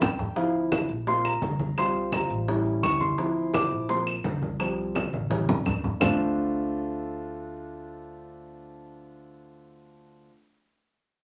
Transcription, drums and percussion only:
0.01 high bongo soft
0.01 low bongo medium
0.01 low conga medium
0.01 claves medium
0.19 high bongo soft
0.19 low conga medium
0.36 high bongo medium
0.36 high conga soft
0.54 high conga soft
0.72 high bongo medium
0.72 high conga medium
0.72 claves medium
0.90 high bongo soft
1.07 high bongo medium
1.07 high conga soft
1.25 high bongo soft
1.25 high conga soft
1.25 claves medium
1.42 high bongo soft
1.42 low bongo medium
1.42 high conga medium
1.59 high bongo soft
1.59 high conga medium
1.77 high bongo medium
1.77 high conga soft
1.77 claves medium
1.95 high conga soft
2.12 high bongo medium
2.12 high conga medium
2.12 claves medium
2.30 high bongo soft
2.30 high conga soft
2.48 high bongo medium
2.48 high conga soft
2.65 high bongo soft
2.65 high conga soft
2.83 high bongo soft
2.83 low bongo medium
2.83 high conga medium
2.83 claves medium
3.01 high bongo soft
3.01 high conga medium
3.18 high bongo medium
3.18 high conga soft
3.37 high conga soft
3.54 high bongo medium
3.54 high conga medium
3.54 claves medium
3.72 high bongo soft
3.89 high bongo medium
3.89 high conga soft
4.07 high bongo soft
4.07 high conga soft
4.07 claves medium
4.24 high bongo soft
4.24 low bongo medium
4.24 high conga medium
4.42 high bongo soft
4.42 high conga medium
4.60 high bongo medium
4.60 high conga soft
4.60 claves medium
4.78 high conga soft
4.95 high bongo medium
4.95 high conga medium
4.95 claves medium
5.13 high bongo soft
5.13 high conga medium
5.31 high bongo medium
5.31 high conga medium
5.48 high bongo soft
5.48 low conga medium
5.66 high bongo soft
5.66 low bongo medium
5.66 low conga medium
5.66 claves medium
5.84 high bongo soft
5.84 low conga medium
6.01 low bongo medium
6.01 low conga medium
6.01 claves medium

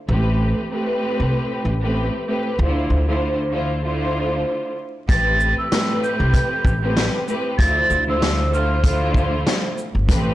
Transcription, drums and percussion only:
5.09 kick loud
5.09 closed hi-hat loud
5.40 shaker medium
5.72 snare loud
5.72 snare medium
5.72 closed hi-hat medium
6.04 shaker medium
6.33 kick loud
6.33 closed hi-hat medium
6.65 kick loud
6.65 shaker soft
6.97 snare loud
6.97 closed hi-hat medium
7.28 shaker medium
7.59 kick loud
7.59 closed hi-hat medium
7.90 shaker medium
8.22 snare loud
8.22 snare medium
8.22 closed hi-hat medium
8.54 shaker medium
8.84 kick loud
8.84 closed hi-hat medium
9.14 kick medium
9.14 shaker soft
9.47 snare loud
9.47 snare medium
9.47 closed hi-hat medium
9.78 shaker medium
10.09 kick loud
10.09 closed hi-hat medium

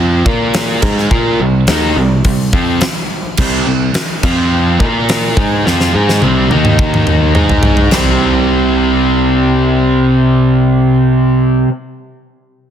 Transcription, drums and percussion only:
0.26 kick loud
0.54 snare loud
0.54 open hi-hat medium
0.82 kick loud
0.82 crash medium
0.98 snare soft
1.11 kick loud
1.67 snare loud
1.67 open hi-hat medium
2.24 kick loud
2.24 open hi-hat medium
2.53 kick loud
2.81 snare loud
2.81 open hi-hat medium
3.37 kick loud
3.37 crash loud
3.94 snare loud
3.94 open hi-hat medium
4.23 kick medium
4.23 crash medium
4.80 kick loud
5.09 snare loud
5.09 open hi-hat medium
5.37 kick loud
5.67 snare medium
5.80 snare medium
6.09 snare medium
6.22 high tom medium
6.51 high tom medium
6.65 mid tom medium
6.79 kick loud
6.94 mid tom medium
7.07 mid tom medium
7.35 mid tom loud
7.49 floor tom medium
7.63 floor tom loud
7.77 floor tom medium
7.91 snare loud
7.91 splash medium

